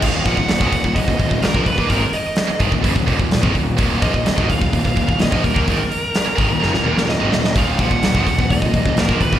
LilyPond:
<<
  \new Staff \with { instrumentName = "Lead electric guitar" } { \time 4/4 \key ees \minor \tempo 4 = 128 f''8 ges''8 ges''4 ees''4 bes'8 ces''8 | bes'8 ees''4 r2 r8 | r8 ees''4 f''4. ees''8 bes'8~ | bes'2. ees''4 |
f''8 ges''8 ges''4 ees''4 bes'8 ces''8 | }
  \new Staff \with { instrumentName = "Distorted electric guitar" } { \clef bass \time 4/4 \key ees \minor <ees, bes, ees>8 <bes, f>16 <ees, bes,>16 <ees, bes,>16 <aes, ees>16 <ees, bes,>16 <ees, bes,>16 <ees, bes,>16 <ees, bes,>16 <ees, bes,>16 <ees, bes,>16 <ees, bes,>16 <bes, f>16 <ees, bes,>16 <ees bes>16 | <aes, ees>16 r4 r16 <aes, ees>16 <ees, bes,>16 <ges, des>16 <ees, bes,>16 <ees, bes,>16 <ees, bes,>8 <aes, ees>16 <ees, bes,>8 | <ees, bes, ees>8 <bes, f>16 <ees, bes,>16 <ees, bes,>16 <aes, ees>16 <ees, bes,>16 <ees, bes,>16 <ees, bes,>16 <ees, bes,>16 <ees, bes,>16 <ees, bes,>16 <ees, bes,>16 <bes, f>16 <ees, bes,>16 <ees bes>16 | <aes, ees>16 r4 r16 <aes, ees>16 <ees, bes,>16 <ges, des>16 <ees, bes,>16 <ees, bes,>16 <ees, bes,>8 <aes, ees>16 <ees, bes,>8 |
<ees, bes, ees>8 <bes, f>16 <ees, bes,>16 <ees, bes,>16 <aes, ees>16 <ees, bes,>16 <ees, bes,>16 <ees, bes,>16 <ees, bes,>16 <ees, bes,>16 <ees, bes,>16 <ees, bes,>16 <bes, f>16 <ees, bes,>16 <ees bes>16 | }
  \new Staff \with { instrumentName = "Distorted electric guitar" } { \clef bass \time 4/4 \key ees \minor <ees, bes, ees>8 <bes, f>16 <ees, bes,>16 <ees, bes,>16 <aes, ees>16 <ees, bes,>16 <ees, bes,>16 <ees, bes,>16 <ees, bes,>16 <ees, bes,>16 <ees, bes,>16 <ees, bes,>16 <bes, f>16 <ees, bes,>16 <ees bes>16 | <aes, ees>16 r4 r16 <aes, ees>16 <ees, bes,>16 <ges, des>16 <ees, bes,>16 <ees, bes,>16 <ees, bes,>8 <aes, ees>16 <ees, bes,>8 | <ees, bes, ees>8 <bes, f>16 <ees, bes,>16 <ees, bes,>16 <aes, ees>16 <ees, bes,>16 <ees, bes,>16 <ees, bes,>16 <ees, bes,>16 <ees, bes,>16 <ees, bes,>16 <ees, bes,>16 <bes, f>16 <ees, bes,>16 <ees bes>16 | <aes, ees>16 r4 r16 <aes, ees>16 <ees, bes,>16 <ges, des>16 <ees, bes,>16 <ees, bes,>16 <ees, bes,>8 <aes, ees>16 <ees, bes,>8 |
<ees, bes, ees>8 <bes, f>16 <ees, bes,>16 <ees, bes,>16 <aes, ees>16 <ees, bes,>16 <ees, bes,>16 <ees, bes,>16 <ees, bes,>16 <ees, bes,>16 <ees, bes,>16 <ees, bes,>16 <bes, f>16 <ees, bes,>16 <ees bes>16 | }
  \new Staff \with { instrumentName = "Picked electric bass" } { \clef bass \time 4/4 \key ees \minor ees,,8 bes,,16 ees,,16 ees,,16 aes,,16 ees,,16 ees,,16 ees,,16 ees,,16 ees,,16 ees,,16 ees,,16 bes,,16 ees,,16 ees,16 | aes,,16 r4 r16 aes,,16 ees,,16 ges,,16 ees,,16 ees,,16 ees,,8 aes,,16 ees,,8 | ees,,8 bes,,16 ees,,16 ees,,16 aes,,16 ees,,16 ees,,16 ees,,16 ees,,16 ees,,16 ees,,16 ees,,16 bes,,16 ees,,16 ees,16 | aes,,16 r4 r16 aes,,16 ees,,16 ges,,16 ees,,16 ees,,16 ees,,8 aes,,16 ees,,8 |
ees,,8 bes,,16 ees,,16 ees,,16 aes,,16 ees,,16 ees,,16 ees,,16 ees,,16 ees,,16 ees,,16 ees,,16 bes,,16 ees,,16 ees,16 | }
  \new DrumStaff \with { instrumentName = "Drums" } \drummode { \time 4/4 <cymc bd>8 <hho bd>16 bd16 <hho sn>16 bd16 <hho bd>16 bd16 <hho bd>16 bd16 <hho bd>16 bd16 <hho sn>16 bd16 <hho bd>16 bd16 | <hho bd>8 hho8 <hho sn>8 <hho bd>16 bd16 <hho bd>16 bd16 <hho bd>16 bd16 <hho sn>16 bd16 <hho bd>8 | <hho bd>8 <hho bd>16 bd16 <hho sn>16 bd16 <hho bd>16 bd16 <hho bd>16 bd16 <hho bd>16 bd16 <hho sn>16 bd16 <hho bd>16 bd16 | <hho bd>8 hho8 <hho sn>8 <hho bd>8 sn16 sn8 sn16 sn8 sn16 sn16 |
<hho bd>8 <hho bd>16 bd16 <hho sn>16 bd16 <hho bd>16 bd16 <hho bd>16 bd16 <hho bd>16 bd16 <hho sn>16 bd16 <hho bd>16 bd16 | }
>>